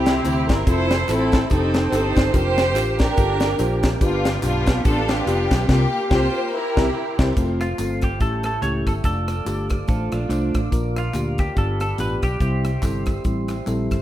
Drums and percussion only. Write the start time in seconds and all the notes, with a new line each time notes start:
0.06 snare, clap, closed hi-hat, tambourine
0.25 clap, closed hi-hat, tambourine
0.49 kick, snare, closed hi-hat, tambourine
0.67 kick, closed hi-hat, tambourine
0.91 snare, closed hi-hat, tambourine
1.09 clap, closed hi-hat, tambourine
1.32 kick, snare, closed hi-hat, tambourine
1.50 kick, closed hi-hat, tambourine
1.74 snare, clap, closed hi-hat, tambourine
1.93 clap, closed hi-hat, tambourine
2.16 kick, snare, closed hi-hat, tambourine
2.34 kick, closed hi-hat, tambourine
2.58 snare, closed hi-hat, tambourine
2.76 clap, closed hi-hat, tambourine
2.99 kick, snare, closed hi-hat, tambourine
3.17 kick, closed hi-hat, tambourine
3.40 snare, clap, closed hi-hat, tambourine
3.59 clap, closed hi-hat, tambourine
3.83 kick, snare, closed hi-hat, tambourine
4.01 kick, closed hi-hat, tambourine
4.25 snare, closed hi-hat, tambourine
4.43 clap, closed hi-hat, tambourine
4.66 kick, snare, closed hi-hat, tambourine
4.85 kick, closed hi-hat, tambourine
5.08 snare, clap, closed hi-hat, tambourine
5.27 clap, closed hi-hat, tambourine
5.51 kick, snare, closed hi-hat, tambourine
5.69 kick, snare, crash
6.11 kick, snare
6.77 kick, snare
7.19 kick, snare, crash
7.37 kick, closed hi-hat, tambourine
7.61 cross-stick, closed hi-hat, tambourine
7.79 clap, closed hi-hat, tambourine
8.02 kick, cross-stick, closed hi-hat, tambourine
8.20 kick, closed hi-hat, tambourine
8.43 cross-stick, closed hi-hat, tambourine
8.63 clap, closed hi-hat, tambourine
8.87 kick, cross-stick, closed hi-hat, tambourine
9.04 kick, closed hi-hat, tambourine
9.28 cross-stick, closed hi-hat, tambourine
9.46 clap, closed hi-hat, tambourine
9.70 kick, cross-stick, closed hi-hat, tambourine
9.88 kick, closed hi-hat, tambourine
10.12 cross-stick, closed hi-hat, tambourine
10.30 clap, closed hi-hat, tambourine
10.54 kick, cross-stick, closed hi-hat, tambourine
10.72 kick, closed hi-hat, tambourine
10.96 cross-stick, closed hi-hat, tambourine
11.14 clap, closed hi-hat, tambourine
11.38 kick, cross-stick, closed hi-hat, tambourine
11.57 kick, closed hi-hat, tambourine
11.80 cross-stick, closed hi-hat, tambourine
11.98 clap, closed hi-hat, tambourine
12.22 kick, cross-stick, closed hi-hat, tambourine
12.40 kick, closed hi-hat, tambourine
12.65 cross-stick, closed hi-hat, tambourine
12.82 kick, clap, closed hi-hat, tambourine
13.06 kick, cross-stick, closed hi-hat, tambourine
13.24 kick, closed hi-hat, tambourine
13.48 cross-stick, clap, closed hi-hat, tambourine
13.67 clap, closed hi-hat, tambourine
13.91 kick, cross-stick, closed hi-hat, tambourine